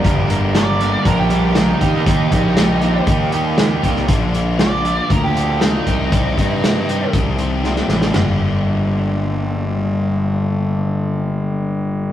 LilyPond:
<<
  \new Staff \with { instrumentName = "Lead electric guitar" } { \time 4/4 \key g \minor \tempo 4 = 118 r4 d''4 bes'16 g'8. ees'4~ | ees'2 r2 | r4 d''4 bes'16 g'8. ees'4~ | ees'2 r2 |
r1 | r1 | }
  \new Staff \with { instrumentName = "Overdriven electric guitar" } { \time 4/4 \key g \minor <g, d g bes d' g'>8 <g, d g bes d' g'>8 <g, d g bes d' g'>8 <g, d g bes d' g'>8 <g, d g bes d' g'>8 <g, d g bes d' g'>8 <g, d g bes d' g'>8 <ees bes ees' g'>8 | <ees bes ees' g'>8 <ees bes ees' g'>8 <ees bes ees' g'>8 <ees bes ees' g'>8 <ees bes ees' g'>8 <ees bes ees' g'>8 <ees bes ees' g'>8 <ees bes ees' g'>8 | <bes, d bes d' f'>8 <bes, d bes d' f'>8 <bes, d bes d' f'>8 <bes, d bes d' f'>8 <bes, d bes d' f'>8 <bes, d bes d' f'>8 <bes, d bes d' f'>8 <c ees g c' g'>8 | <c ees g c' g'>8 <c ees g c' g'>8 <c ees g c' g'>8 <c ees g c' g'>8 <c ees g c' g'>8 <c ees g c' g'>8 <c ees g c' g'>8 <c ees g c' g'>8 |
<g, d g bes d' g'>1~ | <g, d g bes d' g'>1 | }
  \new Staff \with { instrumentName = "Overdriven electric guitar" } { \time 4/4 \key g \minor <g, d g bes d' bes'>8 <g, d g bes d' bes'>8 <g, d g bes d' bes'>8 <g, d g bes d' bes'>8 <g, d g bes d' bes'>8 <g, d g bes d' bes'>8 <g, d g bes d' bes'>8 <ees g bes ees' g'>8 | <ees g bes ees' g'>8 <ees g bes ees' g'>8 <ees g bes ees' g'>8 <ees g bes ees' g'>8 <ees g bes ees' g'>8 <ees g bes ees' g'>8 <ees g bes ees' g'>8 <ees g bes ees' g'>8 | r1 | r1 |
r1 | r1 | }
  \new Staff \with { instrumentName = "Picked electric bass" } { \clef bass \time 4/4 \key g \minor g,,2 bes,,4. ees,8 | ees,8 bes,,4. ees,4. c,8 | bes,,2 d,4. c,8 | c,8 g,4. c,4. a,,8 |
g,,1~ | g,,1 | }
  \new DrumStaff \with { instrumentName = "Drums" } \drummode { \time 4/4 <hh bd>8 hh8 <hh sn>8 hh8 <hh bd>8 hh8 <hh sn>8 <hh bd>8 | <hh bd>8 <hh bd>8 <hh sn>8 hh8 <hh bd>8 hh8 <hh sn>8 <hh bd>16 sn16 | <hh bd>8 hh8 <hh sn>8 hh8 <hh bd>8 hh8 <hh sn>8 <hh bd>8 | <hh bd>8 <hh bd>8 <hh sn>8 hh8 <hh bd>8 hh8 sn16 sn16 sn16 sn16 |
<rb sn tomfh>4 r4 r4 r4 | r4 r4 r4 r4 | }
>>